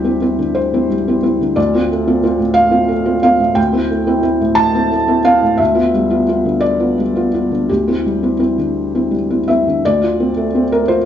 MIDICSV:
0, 0, Header, 1, 2, 480
1, 0, Start_track
1, 0, Key_signature, -1, "minor"
1, 0, Tempo, 673401
1, 1117, Time_signature, 6, 3, 24, 8
1, 4475, Tempo, 710900
1, 6875, Tempo, 689655
1, 7724, End_track
2, 0, Start_track
2, 0, Title_t, "Felt piano"
2, 0, Program_c, 0, 0
2, 0, Control_c, 0, 64, 127
2, 0, Note_on_c, 0, 38, 51
2, 0, Note_on_c, 0, 55, 43
2, 0, Note_on_c, 0, 60, 43
2, 0, Note_on_c, 0, 64, 46
2, 0, Note_on_c, 0, 67, 73
2, 31, Note_off_c, 0, 60, 0
2, 31, Note_on_c, 0, 60, 44
2, 37, Note_off_c, 0, 64, 0
2, 37, Note_on_c, 0, 64, 49
2, 108, Note_off_c, 0, 55, 0
2, 143, Note_off_c, 0, 60, 0
2, 146, Note_off_c, 0, 64, 0
2, 154, Note_on_c, 0, 60, 47
2, 159, Note_on_c, 0, 64, 54
2, 266, Note_off_c, 0, 60, 0
2, 269, Note_off_c, 0, 64, 0
2, 276, Note_on_c, 0, 50, 49
2, 390, Note_on_c, 0, 72, 77
2, 403, Note_off_c, 0, 67, 0
2, 526, Note_on_c, 0, 60, 46
2, 526, Note_on_c, 0, 64, 49
2, 632, Note_off_c, 0, 60, 0
2, 632, Note_off_c, 0, 64, 0
2, 642, Note_on_c, 0, 55, 45
2, 663, Note_off_c, 0, 50, 0
2, 768, Note_on_c, 0, 60, 44
2, 777, Note_on_c, 0, 64, 50
2, 832, Note_off_c, 0, 55, 0
2, 866, Note_off_c, 0, 60, 0
2, 870, Note_off_c, 0, 64, 0
2, 876, Note_on_c, 0, 60, 49
2, 881, Note_on_c, 0, 64, 51
2, 985, Note_off_c, 0, 60, 0
2, 987, Note_off_c, 0, 64, 0
2, 1006, Note_on_c, 0, 50, 46
2, 1111, Note_off_c, 0, 72, 0
2, 1111, Note_on_c, 0, 74, 81
2, 1116, Note_off_c, 0, 38, 0
2, 1116, Note_on_c, 0, 38, 65
2, 1121, Note_off_c, 0, 50, 0
2, 1131, Control_c, 0, 64, 0
2, 1233, Note_off_c, 0, 38, 0
2, 1244, Note_on_c, 0, 60, 50
2, 1245, Note_on_c, 0, 65, 52
2, 1246, Control_c, 0, 64, 127
2, 1349, Note_off_c, 0, 60, 0
2, 1349, Note_off_c, 0, 65, 0
2, 1365, Note_on_c, 0, 57, 48
2, 1479, Note_on_c, 0, 60, 56
2, 1480, Note_on_c, 0, 65, 55
2, 1552, Note_off_c, 0, 57, 0
2, 1582, Note_off_c, 0, 60, 0
2, 1585, Note_off_c, 0, 65, 0
2, 1593, Note_on_c, 0, 60, 54
2, 1602, Note_on_c, 0, 65, 58
2, 1701, Note_off_c, 0, 60, 0
2, 1704, Note_on_c, 0, 45, 55
2, 1706, Note_off_c, 0, 65, 0
2, 1809, Note_on_c, 0, 77, 96
2, 1829, Note_off_c, 0, 74, 0
2, 1934, Note_on_c, 0, 60, 52
2, 1935, Note_on_c, 0, 65, 59
2, 2048, Note_off_c, 0, 60, 0
2, 2048, Note_off_c, 0, 65, 0
2, 2056, Note_on_c, 0, 57, 53
2, 2087, Note_off_c, 0, 45, 0
2, 2178, Note_on_c, 0, 60, 50
2, 2179, Note_on_c, 0, 65, 56
2, 2252, Note_off_c, 0, 57, 0
2, 2289, Note_off_c, 0, 60, 0
2, 2289, Note_off_c, 0, 65, 0
2, 2291, Note_off_c, 0, 77, 0
2, 2301, Note_on_c, 0, 77, 93
2, 2307, Note_on_c, 0, 60, 50
2, 2312, Note_on_c, 0, 65, 57
2, 2414, Note_off_c, 0, 60, 0
2, 2417, Note_off_c, 0, 65, 0
2, 2424, Note_on_c, 0, 45, 58
2, 2531, Note_on_c, 0, 79, 93
2, 2539, Note_on_c, 0, 38, 66
2, 2543, Note_off_c, 0, 77, 0
2, 2544, Note_off_c, 0, 45, 0
2, 2559, Control_c, 0, 64, 0
2, 2657, Note_on_c, 0, 60, 50
2, 2659, Note_off_c, 0, 38, 0
2, 2667, Note_on_c, 0, 64, 55
2, 2674, Control_c, 0, 64, 127
2, 2769, Note_off_c, 0, 60, 0
2, 2775, Note_off_c, 0, 64, 0
2, 2782, Note_on_c, 0, 57, 56
2, 2900, Note_on_c, 0, 60, 60
2, 2905, Note_on_c, 0, 64, 59
2, 2976, Note_off_c, 0, 57, 0
2, 3001, Note_off_c, 0, 60, 0
2, 3006, Note_off_c, 0, 64, 0
2, 3011, Note_on_c, 0, 60, 55
2, 3017, Note_on_c, 0, 64, 63
2, 3126, Note_off_c, 0, 60, 0
2, 3128, Note_off_c, 0, 64, 0
2, 3144, Note_on_c, 0, 45, 56
2, 3244, Note_on_c, 0, 81, 96
2, 3258, Note_off_c, 0, 79, 0
2, 3384, Note_on_c, 0, 60, 53
2, 3387, Note_on_c, 0, 64, 57
2, 3492, Note_off_c, 0, 60, 0
2, 3493, Note_off_c, 0, 64, 0
2, 3493, Note_off_c, 0, 81, 0
2, 3503, Note_on_c, 0, 57, 53
2, 3527, Note_off_c, 0, 45, 0
2, 3620, Note_on_c, 0, 64, 60
2, 3625, Note_on_c, 0, 60, 50
2, 3695, Note_off_c, 0, 57, 0
2, 3730, Note_off_c, 0, 64, 0
2, 3732, Note_off_c, 0, 60, 0
2, 3740, Note_on_c, 0, 77, 96
2, 3743, Note_on_c, 0, 60, 50
2, 3745, Note_on_c, 0, 64, 61
2, 3852, Note_off_c, 0, 60, 0
2, 3853, Note_off_c, 0, 64, 0
2, 3868, Note_on_c, 0, 45, 52
2, 3974, Note_on_c, 0, 76, 78
2, 3984, Note_off_c, 0, 77, 0
2, 3986, Note_on_c, 0, 38, 70
2, 3988, Note_off_c, 0, 45, 0
2, 4000, Control_c, 0, 64, 0
2, 4094, Note_on_c, 0, 59, 53
2, 4099, Note_on_c, 0, 65, 58
2, 4104, Note_off_c, 0, 38, 0
2, 4121, Control_c, 0, 64, 127
2, 4210, Note_off_c, 0, 59, 0
2, 4212, Note_off_c, 0, 65, 0
2, 4235, Note_on_c, 0, 55, 57
2, 4348, Note_on_c, 0, 59, 55
2, 4352, Note_on_c, 0, 65, 59
2, 4427, Note_off_c, 0, 55, 0
2, 4459, Note_off_c, 0, 59, 0
2, 4462, Note_off_c, 0, 65, 0
2, 4479, Note_on_c, 0, 65, 56
2, 4481, Note_on_c, 0, 59, 51
2, 4581, Note_off_c, 0, 65, 0
2, 4583, Note_off_c, 0, 59, 0
2, 4594, Note_on_c, 0, 50, 52
2, 4696, Note_on_c, 0, 74, 91
2, 4702, Note_off_c, 0, 76, 0
2, 4824, Note_on_c, 0, 59, 48
2, 4827, Note_on_c, 0, 65, 52
2, 4932, Note_off_c, 0, 59, 0
2, 4934, Note_off_c, 0, 65, 0
2, 4948, Note_on_c, 0, 55, 48
2, 4971, Note_off_c, 0, 50, 0
2, 5068, Note_on_c, 0, 59, 46
2, 5074, Note_on_c, 0, 65, 52
2, 5138, Note_off_c, 0, 55, 0
2, 5174, Note_off_c, 0, 59, 0
2, 5177, Note_off_c, 0, 65, 0
2, 5191, Note_on_c, 0, 59, 44
2, 5194, Note_on_c, 0, 65, 52
2, 5296, Note_off_c, 0, 59, 0
2, 5298, Note_off_c, 0, 65, 0
2, 5311, Note_on_c, 0, 50, 42
2, 5419, Note_off_c, 0, 74, 0
2, 5428, Note_off_c, 0, 50, 0
2, 5431, Note_on_c, 0, 67, 67
2, 5437, Control_c, 0, 64, 0
2, 5442, Note_on_c, 0, 38, 52
2, 5551, Note_off_c, 0, 38, 0
2, 5554, Note_on_c, 0, 60, 42
2, 5559, Note_on_c, 0, 64, 45
2, 5573, Control_c, 0, 64, 127
2, 5659, Note_off_c, 0, 60, 0
2, 5661, Note_off_c, 0, 64, 0
2, 5680, Note_on_c, 0, 55, 48
2, 5792, Note_on_c, 0, 60, 43
2, 5797, Note_on_c, 0, 64, 46
2, 5866, Note_off_c, 0, 55, 0
2, 5894, Note_off_c, 0, 60, 0
2, 5898, Note_off_c, 0, 64, 0
2, 5904, Note_on_c, 0, 60, 42
2, 5908, Note_on_c, 0, 64, 46
2, 6014, Note_off_c, 0, 60, 0
2, 6016, Note_off_c, 0, 64, 0
2, 6030, Note_on_c, 0, 50, 45
2, 6278, Note_on_c, 0, 60, 39
2, 6281, Note_on_c, 0, 64, 43
2, 6383, Note_off_c, 0, 60, 0
2, 6385, Note_off_c, 0, 64, 0
2, 6388, Note_on_c, 0, 55, 40
2, 6416, Note_off_c, 0, 50, 0
2, 6518, Note_on_c, 0, 64, 45
2, 6519, Note_on_c, 0, 60, 37
2, 6584, Note_off_c, 0, 55, 0
2, 6625, Note_off_c, 0, 60, 0
2, 6625, Note_off_c, 0, 64, 0
2, 6635, Note_on_c, 0, 76, 71
2, 6636, Note_off_c, 0, 67, 0
2, 6643, Note_on_c, 0, 64, 42
2, 6644, Note_on_c, 0, 60, 39
2, 6747, Note_off_c, 0, 64, 0
2, 6748, Note_off_c, 0, 60, 0
2, 6769, Note_on_c, 0, 50, 43
2, 6873, Note_off_c, 0, 76, 0
2, 6880, Note_off_c, 0, 50, 0
2, 6884, Control_c, 0, 64, 0
2, 6889, Note_on_c, 0, 74, 94
2, 6894, Note_on_c, 0, 38, 62
2, 6991, Control_c, 0, 64, 127
2, 7017, Note_on_c, 0, 65, 55
2, 7131, Note_on_c, 0, 60, 51
2, 7198, Note_off_c, 0, 65, 0
2, 7248, Note_on_c, 0, 57, 61
2, 7315, Note_off_c, 0, 60, 0
2, 7374, Note_on_c, 0, 60, 60
2, 7433, Note_off_c, 0, 57, 0
2, 7483, Note_off_c, 0, 74, 0
2, 7495, Note_on_c, 0, 57, 53
2, 7495, Note_on_c, 0, 70, 84
2, 7556, Note_off_c, 0, 60, 0
2, 7604, Note_off_c, 0, 70, 0
2, 7605, Note_on_c, 0, 72, 87
2, 7609, Note_on_c, 0, 65, 57
2, 7675, Note_off_c, 0, 57, 0
2, 7724, Note_off_c, 0, 38, 0
2, 7724, Note_off_c, 0, 65, 0
2, 7724, Note_off_c, 0, 72, 0
2, 7724, End_track
0, 0, End_of_file